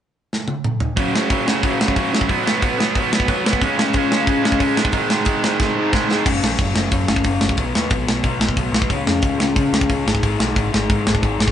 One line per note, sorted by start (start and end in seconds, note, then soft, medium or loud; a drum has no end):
0.33 snare medium
0.48 high tom medium
0.64 mid tom medium
0.80 floor tom medium
0.97 1.13 F#2 medium
0.97 1.13 C#3 medium
0.97 1.13 F#3 loud
0.97 kick loud
0.97 open hi-hat medium
1.13 1.28 F#2 medium
1.13 1.29 C#3 medium
1.13 1.30 F#3 medium
1.13 snare loud
1.29 1.46 F#2 medium
1.29 1.46 C#3 medium
1.29 1.46 F#3 medium
1.29 kick medium
1.29 open hi-hat medium
1.46 1.62 F#2 medium
1.46 1.63 C#3 medium
1.46 1.64 F#3 medium
1.46 snare loud
1.63 1.79 F#2 medium
1.63 1.79 C#3 medium
1.63 1.79 F#3 medium
1.63 kick medium
1.63 open hi-hat medium
1.80 1.94 F#2 medium
1.80 1.95 C#3 medium
1.80 1.96 F#3 medium
1.80 snare loud
1.88 kick medium
1.95 2.13 F#2 medium
1.95 2.12 C#3 medium
1.95 2.12 F#3 medium
1.95 kick medium
1.95 open hi-hat medium
2.13 2.29 F#2 medium
2.13 2.29 C#3 medium
2.13 2.28 F#3 medium
2.13 snare loud
2.21 kick medium
2.29 2.46 B2 medium
2.29 2.46 F#3 medium
2.29 2.45 B3 medium
2.29 kick medium
2.29 open hi-hat medium
2.46 2.61 B2 medium
2.46 2.62 F#3 medium
2.46 2.63 B3 medium
2.46 snare loud
2.62 2.79 B2 medium
2.62 2.79 F#3 medium
2.62 2.78 B3 medium
2.62 kick medium
2.62 open hi-hat medium
2.79 2.94 B2 medium
2.79 2.95 F#3 medium
2.79 2.96 B3 medium
2.79 snare loud
2.95 3.11 B2 medium
2.95 3.11 F#3 loud
2.95 3.10 B3 medium
2.95 kick medium
2.95 open hi-hat soft
3.12 3.27 B2 medium
3.12 3.27 F#3 medium
3.12 3.29 B3 medium
3.12 snare loud
3.20 kick medium
3.28 3.46 B2 medium
3.28 3.45 F#3 medium
3.28 3.43 B3 medium
3.28 kick medium
3.28 open hi-hat soft
3.45 3.61 B2 medium
3.45 3.61 F#3 medium
3.45 3.60 B3 medium
3.45 snare loud
3.53 kick medium
3.62 3.78 C#3 medium
3.62 3.78 G#3 medium
3.62 3.77 C#4 medium
3.62 kick medium
3.62 open hi-hat medium
3.78 3.94 C#3 medium
3.78 3.95 G#3 medium
3.78 3.95 C#4 medium
3.78 snare loud
3.93 4.12 C#3 medium
3.93 4.11 G#3 medium
3.93 4.10 C#4 medium
3.93 kick medium
3.93 open hi-hat soft
4.11 4.26 C#3 medium
4.11 4.27 G#3 medium
4.11 4.28 C#4 medium
4.11 snare loud
4.27 4.44 C#3 medium
4.27 4.44 G#3 loud
4.27 4.43 C#4 loud
4.27 kick loud
4.27 open hi-hat medium
4.45 4.60 C#3 medium
4.45 4.60 G#3 medium
4.45 4.61 C#4 medium
4.45 snare loud
4.52 kick medium
4.60 4.76 C#3 medium
4.60 4.77 G#3 medium
4.60 4.77 C#4 medium
4.60 kick medium
4.60 open hi-hat medium
4.77 4.94 G#2 medium
4.77 4.93 D#3 loud
4.77 4.92 G#3 loud
4.77 snare loud
4.85 kick medium
4.92 5.08 G#2 medium
4.92 5.09 D#3 medium
4.92 5.10 G#3 medium
4.92 kick loud
4.92 open hi-hat medium
5.09 5.26 G#2 medium
5.09 5.26 D#3 medium
5.09 5.25 G#3 medium
5.09 snare loud
5.25 5.41 G#2 medium
5.25 5.42 D#3 medium
5.25 5.43 G#3 medium
5.25 kick loud
5.25 open hi-hat medium
5.42 5.60 G#2 medium
5.42 5.60 D#3 medium
5.42 5.59 G#3 medium
5.42 snare loud
5.60 5.76 G#2 medium
5.60 5.76 D#3 medium
5.60 5.77 G#3 medium
5.60 kick medium
5.60 snare medium
5.77 5.93 G#2 medium
5.77 5.92 D#3 medium
5.77 5.91 G#3 medium
5.92 6.08 G#2 medium
5.92 6.09 D#3 medium
5.92 6.10 G#3 medium
5.92 kick loud
5.92 snare medium
6.09 6.25 G#2 medium
6.09 6.25 D#3 medium
6.09 6.26 G#3 medium
6.09 snare medium
6.25 6.38 F#1 medium
6.25 6.43 F#2 medium
6.25 6.41 C#3 medium
6.25 6.42 F#3 loud
6.25 kick loud
6.25 crash loud
6.42 6.55 A#1 medium
6.42 6.57 F#2 medium
6.42 6.58 C#3 medium
6.42 6.59 F#3 medium
6.42 snare loud
6.58 6.71 F#1 medium
6.58 6.75 F#2 medium
6.58 6.74 C#3 medium
6.58 6.74 F#3 medium
6.58 kick loud
6.58 open hi-hat medium
6.74 6.88 F#1 medium
6.74 6.90 F#2 medium
6.74 6.91 C#3 medium
6.74 6.91 F#3 medium
6.74 snare loud
6.91 7.08 F#2 medium
6.91 7.05 F#2 medium
6.91 7.07 C#3 medium
6.91 7.07 F#3 medium
6.91 kick loud
6.91 open hi-hat medium
7.08 7.21 F#1 medium
7.08 7.23 F#2 medium
7.08 7.24 C#3 medium
7.08 7.25 F#3 medium
7.08 snare loud
7.16 kick medium
7.24 7.37 F#1 medium
7.24 7.42 F#2 medium
7.24 7.41 C#3 medium
7.24 7.40 F#3 medium
7.24 kick medium
7.24 open hi-hat medium
7.41 7.54 F#1 medium
7.41 7.58 F#2 medium
7.41 7.57 C#3 medium
7.41 7.57 F#3 medium
7.41 snare loud
7.49 kick medium
7.57 7.71 B1 medium
7.57 7.74 B2 medium
7.57 7.75 F#3 medium
7.57 7.73 B3 medium
7.57 kick medium
7.57 open hi-hat medium
7.75 7.88 D#2 medium
7.75 7.90 B2 medium
7.75 7.91 F#3 medium
7.75 7.91 B3 medium
7.75 snare loud
7.90 8.04 B1 medium
7.90 8.07 B2 medium
7.90 8.06 F#3 medium
7.90 8.06 B3 medium
7.90 kick loud
7.90 open hi-hat soft
8.07 8.20 B1 medium
8.07 8.22 B2 medium
8.07 8.23 F#3 medium
8.07 8.24 B3 medium
8.07 snare loud
8.23 8.40 B2 medium
8.23 8.37 B2 medium
8.23 8.39 F#3 medium
8.23 8.39 B3 medium
8.23 kick medium
8.23 open hi-hat soft
8.39 8.52 B1 medium
8.39 8.56 B2 medium
8.39 8.57 F#3 medium
8.39 8.57 B3 medium
8.39 snare loud
8.49 kick medium
8.57 8.70 B1 medium
8.57 8.75 B2 medium
8.57 8.74 F#3 medium
8.57 8.73 B3 medium
8.57 kick medium
8.57 open hi-hat soft
8.72 8.85 B1 medium
8.72 8.90 F#3 medium
8.72 8.90 B3 medium
8.72 snare loud
8.76 8.89 B2 medium
8.82 kick medium
8.90 9.03 C#2 medium
8.90 9.06 C#3 medium
8.90 9.06 G#3 loud
8.90 9.05 C#4 loud
8.90 kick medium
8.90 open hi-hat medium
9.06 9.19 F2 medium
9.06 9.21 C#3 medium
9.06 9.23 G#3 medium
9.06 9.23 C#4 medium
9.06 snare loud
9.22 9.36 C#2 medium
9.22 9.40 C#3 medium
9.22 9.40 G#3 medium
9.22 9.38 C#4 medium
9.22 kick loud
9.22 open hi-hat medium
9.38 9.52 C#2 medium
9.38 9.54 C#3 medium
9.38 9.56 G#3 medium
9.38 9.56 C#4 loud
9.38 snare loud
9.56 9.73 C#3 medium
9.56 9.69 C#3 medium
9.56 9.72 G#3 medium
9.56 9.72 C#4 medium
9.56 kick loud
9.56 open hi-hat medium
9.72 9.85 C#2 medium
9.72 9.88 C#3 medium
9.72 9.89 G#3 medium
9.72 9.90 C#4 loud
9.72 snare loud
9.81 kick medium
9.89 10.02 C#2 medium
9.89 10.05 C#3 medium
9.89 10.05 G#3 medium
9.89 10.06 C#4 medium
9.89 kick medium
9.89 open hi-hat medium
10.05 10.19 G#1 medium
10.05 10.23 G#2 medium
10.05 10.22 D#3 medium
10.05 10.21 G#3 loud
10.05 snare loud
10.15 kick medium
10.23 10.35 G#1 medium
10.23 10.37 G#2 medium
10.23 10.38 D#3 medium
10.23 10.38 G#3 loud
10.23 kick medium
10.23 open hi-hat medium
10.38 10.52 B1 medium
10.38 10.55 G#2 medium
10.38 10.55 D#3 medium
10.38 10.54 G#3 medium
10.38 snare loud
10.55 10.69 G#1 medium
10.55 10.70 G#2 medium
10.55 10.71 D#3 medium
10.55 10.72 G#3 medium
10.55 kick loud
10.55 open hi-hat medium
10.71 10.86 G#1 medium
10.71 10.90 G#2 loud
10.71 10.89 D#3 medium
10.71 10.88 G#3 loud
10.71 snare medium
10.89 11.02 G#2 medium
10.89 11.05 G#2 medium
10.89 11.05 D#3 medium
10.89 11.06 G#3 medium
10.89 kick loud
10.89 open hi-hat medium
11.06 11.19 G#1 medium
11.06 11.22 G#2 medium
11.06 11.22 D#3 medium
11.06 11.21 G#3 loud
11.06 snare loud
11.15 kick medium
11.22 11.36 G#1 medium
11.22 11.37 G#2 medium
11.22 11.38 D#3 medium
11.22 11.39 G#3 medium
11.22 kick medium
11.22 open hi-hat medium
11.38 11.51 G#1 medium
11.38 11.52 G#2 medium
11.38 11.52 D#3 medium
11.38 11.52 G#3 medium
11.38 snare loud
11.48 kick medium